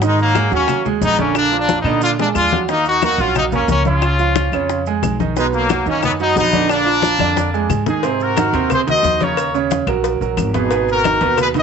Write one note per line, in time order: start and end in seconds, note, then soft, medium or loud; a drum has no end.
0.00 0.46 G#2 loud
0.00 0.30 D#3 medium
0.00 0.18 G#3 medium
0.00 0.30 D#4 medium
0.00 0.19 D#4 medium
0.00 0.30 D#5 medium
0.00 high bongo medium
0.00 high conga soft
0.00 maracas medium
0.18 0.51 F#3 medium
0.18 0.51 A#3 loud
0.18 high bongo soft
0.18 high conga soft
0.18 maracas soft
0.35 0.49 G#3 medium
0.35 0.49 G#4 medium
0.35 0.49 G#5 medium
0.35 high bongo medium
0.35 high conga loud
0.35 claves medium
0.35 maracas medium
0.51 0.98 D#2 medium
0.51 0.79 F#3 medium
0.51 0.84 A#3 medium
0.51 0.84 C#4 medium
0.51 0.79 F#4 medium
0.51 0.80 F#5 medium
0.51 high bongo soft
0.51 high conga soft
0.51 maracas soft
0.68 high bongo medium
0.68 high conga soft
0.68 low conga medium
0.68 claves medium
0.68 maracas medium
0.85 1.13 G#3 medium
0.85 1.13 G#4 medium
0.85 1.13 G#5 medium
0.85 high conga soft
0.85 low conga medium
0.85 maracas soft
1.01 1.80 A#1 medium
1.01 1.19 B3 medium
1.01 1.19 D#4 loud
1.01 high bongo soft
1.01 low bongo medium
1.01 high conga medium
1.01 maracas medium
1.18 1.46 D3 medium
1.18 1.35 A#3 medium
1.18 1.35 C#4 medium
1.18 1.46 D4 medium
1.18 1.47 D5 medium
1.18 high bongo soft
1.18 high conga medium
1.18 maracas soft
1.35 1.58 A#3 medium
1.35 1.57 D4 loud
1.35 high bongo medium
1.35 claves medium
1.35 maracas medium
1.52 1.79 F3 medium
1.52 1.80 F4 medium
1.52 1.80 F5 medium
1.52 high bongo soft
1.52 high conga soft
1.52 maracas soft
1.60 1.80 A#3 medium
1.60 1.80 D4 loud
1.69 high bongo medium
1.69 high conga loud
1.69 maracas medium
1.81 2.31 A#2 loud
1.81 2.01 B3 medium
1.81 2.01 D#4 medium
1.81 claves medium
1.85 2.13 D3 medium
1.85 2.13 D4 medium
1.85 2.13 D5 medium
1.85 high bongo soft
1.85 maracas soft
2.01 2.11 D4 medium
2.01 2.10 F4 loud
2.01 high bongo medium
2.01 high conga soft
2.01 maracas medium
2.19 2.46 G#3 medium
2.19 2.28 A#3 medium
2.19 2.27 D4 medium
2.19 2.47 G#4 medium
2.19 2.47 G#5 medium
2.19 low bongo medium
2.19 high conga soft
2.19 maracas soft
2.35 3.13 D#2 medium
2.35 2.60 D4 medium
2.35 2.59 F4 loud
2.35 low bongo medium
2.35 high conga medium
2.35 claves medium
2.35 maracas medium
2.52 2.66 F#3 medium
2.52 2.66 F#4 medium
2.52 2.66 F#5 medium
2.52 low bongo medium
2.52 high conga medium
2.52 maracas soft
2.69 2.96 D#3 medium
2.69 2.85 A#3 medium
2.69 2.85 D#4 loud
2.69 2.97 D#4 medium
2.69 2.97 D#5 medium
2.69 high bongo medium
2.69 high conga soft
2.69 maracas medium
2.85 3.02 D#4 medium
2.85 3.02 F#4 loud
2.85 high bongo soft
2.85 high conga soft
2.85 maracas soft
3.02 3.17 A#3 medium
3.02 3.19 D#4 medium
3.02 3.18 F#4 loud
3.02 3.17 A#4 medium
3.02 3.17 A#5 medium
3.02 high bongo medium
3.02 high conga medium
3.02 claves medium
3.02 maracas medium
3.18 3.65 A#1 medium
3.18 3.47 F#3 medium
3.18 3.37 C#4 medium
3.18 3.36 F4 medium
3.18 3.47 F#4 medium
3.18 3.47 F#5 medium
3.18 high bongo soft
3.18 maracas soft
3.35 3.44 A#3 medium
3.35 3.44 D#4 loud
3.35 high bongo medium
3.35 high conga soft
3.35 low conga medium
3.35 claves medium
3.35 maracas medium
3.52 3.80 A#3 medium
3.52 3.69 A#3 medium
3.52 3.68 C#4 medium
3.52 3.80 A#4 medium
3.52 3.80 A#5 medium
3.52 high conga soft
3.52 low conga medium
3.52 maracas soft
3.68 4.46 C#2 medium
3.68 3.85 A#3 medium
3.68 3.85 C#4 loud
3.68 high bongo soft
3.68 low bongo medium
3.68 high conga medium
3.68 maracas medium
3.85 4.14 C#3 medium
3.85 4.14 C#4 medium
3.85 4.83 C#4 medium
3.85 4.82 F4 medium
3.85 4.14 C#5 medium
3.85 high bongo soft
3.85 high conga medium
3.85 maracas soft
4.02 high bongo medium
4.02 high conga soft
4.02 claves medium
4.02 maracas medium
4.19 4.47 F3 medium
4.19 4.47 F4 medium
4.19 4.47 F5 medium
4.19 high bongo soft
4.19 high conga soft
4.19 maracas soft
4.36 high bongo medium
4.36 high conga loud
4.36 maracas medium
4.52 4.99 F2 medium
4.52 4.80 C#3 medium
4.52 4.81 C#4 medium
4.52 4.81 C#5 medium
4.52 high bongo soft
4.52 claves medium
4.52 maracas soft
4.69 high bongo medium
4.69 high conga soft
4.69 maracas medium
4.86 5.14 G#3 medium
4.86 5.14 G#4 medium
4.86 5.14 G#5 medium
4.86 high conga soft
4.86 maracas soft
5.02 5.81 B1 medium
5.02 high bongo soft
5.02 low bongo medium
5.02 high conga medium
5.02 claves medium
5.02 maracas medium
5.20 5.33 D#3 medium
5.20 5.34 D#4 medium
5.20 5.34 D#5 medium
5.20 high bongo soft
5.20 high conga medium
5.20 maracas soft
5.36 5.64 B2 medium
5.36 5.45 G#3 loud
5.36 5.64 B3 medium
5.36 5.45 D#4 medium
5.36 5.64 B4 medium
5.36 high bongo medium
5.36 high conga soft
5.36 maracas medium
5.53 5.85 F#3 medium
5.53 5.85 A#3 medium
5.53 high bongo soft
5.53 high conga soft
5.53 maracas soft
5.69 5.83 F#3 medium
5.69 5.84 F#4 medium
5.69 5.84 F#5 medium
5.69 high bongo medium
5.69 high conga loud
5.69 claves medium
5.69 maracas medium
5.86 6.33 F#2 medium
5.86 6.14 D#3 medium
5.86 6.03 A#3 medium
5.86 6.03 C#4 loud
5.86 6.14 D#4 medium
5.86 6.14 D#5 medium
5.86 high bongo soft
5.86 high conga soft
5.86 maracas soft
6.02 6.12 F#3 medium
6.02 6.11 B3 loud
6.02 high bongo medium
6.02 high conga soft
6.02 low conga medium
6.02 claves medium
6.02 maracas medium
6.20 6.47 F#3 medium
6.20 6.36 B3 medium
6.20 6.36 D#4 loud
6.20 6.48 F#4 medium
6.20 6.48 F#5 medium
6.20 high conga soft
6.20 maracas soft
6.36 7.14 A#1 medium
6.36 6.68 B3 medium
6.36 6.68 D#4 loud
6.36 high bongo soft
6.36 low bongo medium
6.36 high conga medium
6.36 maracas medium
6.53 6.81 D3 medium
6.53 6.81 D4 medium
6.53 6.81 D5 medium
6.53 high bongo soft
6.53 high conga medium
6.53 maracas soft
6.69 7.71 A#3 medium
6.69 7.70 D4 loud
6.69 high bongo medium
6.69 high conga soft
6.69 claves medium
6.69 maracas medium
6.86 7.14 F3 medium
6.86 7.14 F4 medium
6.86 7.14 F5 medium
6.86 high bongo soft
6.86 maracas soft
7.02 high bongo medium
7.02 high conga loud
7.02 maracas medium
7.19 7.66 F2 medium
7.19 7.47 D3 medium
7.19 7.48 D4 medium
7.19 7.48 D5 medium
7.19 high bongo soft
7.19 high conga loud
7.19 claves medium
7.19 maracas soft
7.37 high bongo medium
7.37 high conga medium
7.37 maracas medium
7.54 7.81 G#3 medium
7.54 7.81 G#4 medium
7.54 7.81 G#5 medium
7.54 maracas soft
7.69 8.48 G#2 medium
7.69 high bongo soft
7.69 low bongo medium
7.69 low conga medium
7.69 claves medium
7.69 maracas medium
7.86 8.01 D#3 medium
7.86 8.01 D#4 medium
7.86 8.19 D#4 medium
7.86 8.18 G#4 medium
7.86 8.01 D#5 medium
7.86 high bongo soft
7.86 low conga medium
7.86 maracas soft
8.03 8.31 C3 medium
8.03 8.31 C4 medium
8.03 8.31 C5 medium
8.03 cowbell loud
8.03 high conga soft
8.03 maracas medium
8.20 8.71 F#4 medium
8.20 8.71 A#4 medium
8.20 high conga soft
8.20 maracas soft
8.36 8.51 D#3 medium
8.36 8.51 D#4 medium
8.36 8.51 F#4 medium
8.36 cowbell medium
8.36 high conga loud
8.36 claves medium
8.36 maracas medium
8.53 9.00 D#2 medium
8.53 8.81 C3 medium
8.53 8.82 C4 medium
8.53 8.82 C5 medium
8.53 cowbell medium
8.53 high conga soft
8.53 maracas soft
8.70 8.80 G#4 medium
8.70 8.80 C5 medium
8.70 cowbell loud
8.70 high conga soft
8.70 low conga medium
8.70 claves medium
8.70 maracas medium
8.87 9.14 D#3 medium
8.87 9.15 D#4 medium
8.87 9.15 F#4 medium
8.87 9.19 C5 medium
8.87 9.20 D#5 loud
8.87 cowbell medium
8.87 high conga soft
8.87 low conga medium
8.87 maracas soft
9.03 9.81 D#2 medium
9.03 cowbell medium
9.03 high conga medium
9.03 maracas medium
9.20 9.48 C#3 medium
9.20 9.48 C#4 medium
9.20 9.55 A#4 medium
9.20 9.48 C#5 medium
9.20 9.55 C#5 medium
9.20 cowbell medium
9.20 high conga medium
9.20 maracas soft
9.37 cowbell loud
9.37 high conga soft
9.37 claves medium
9.37 maracas medium
9.54 9.82 C#3 medium
9.54 9.82 C#4 medium
9.54 9.82 C#5 medium
9.54 high conga soft
9.54 maracas soft
9.71 cowbell medium
9.71 high conga loud
9.71 maracas medium
9.87 10.18 A#1 medium
9.87 10.15 F#3 medium
9.87 10.15 F#4 medium
9.87 10.16 A#4 medium
9.87 cowbell medium
9.87 claves medium
9.87 maracas soft
10.04 cowbell loud
10.04 high conga soft
10.04 maracas medium
10.21 10.36 A#1 medium
10.21 10.48 F#3 medium
10.21 10.49 F#4 medium
10.21 10.49 A#4 medium
10.21 high conga soft
10.21 maracas soft
10.37 11.15 G#1 medium
10.37 cowbell medium
10.37 high conga medium
10.37 claves medium
10.37 maracas medium
10.54 10.68 B2 medium
10.54 10.68 B3 medium
10.54 10.87 D#4 medium
10.54 10.86 G#4 medium
10.54 10.69 B4 medium
10.54 cowbell medium
10.54 high conga medium
10.54 maracas soft
10.71 10.99 B2 medium
10.71 10.99 B3 medium
10.71 10.99 B4 medium
10.71 cowbell loud
10.71 maracas medium
10.89 11.36 F#4 medium
10.89 11.36 A#4 loud
10.89 high conga soft
10.89 maracas soft
11.04 11.18 D#3 medium
11.04 11.19 D#4 medium
11.04 11.19 F#4 medium
11.04 cowbell medium
11.04 high conga loud
11.04 claves medium
11.04 maracas medium
11.21 11.63 D#2 loud
11.21 11.49 B2 medium
11.21 11.49 B3 medium
11.21 11.49 B4 medium
11.21 cowbell medium
11.21 high conga soft
11.21 maracas soft
11.37 11.47 G#4 medium
11.37 11.48 B4 loud
11.37 cowbell loud
11.37 high conga soft
11.37 low conga medium
11.37 claves medium
11.37 maracas medium
11.54 11.63 D#3 medium
11.54 11.63 D#4 medium
11.54 11.63 F#4 medium
11.54 11.63 B4 medium
11.54 11.63 D#5 loud
11.54 cowbell medium
11.54 high conga soft
11.54 low conga medium
11.54 maracas soft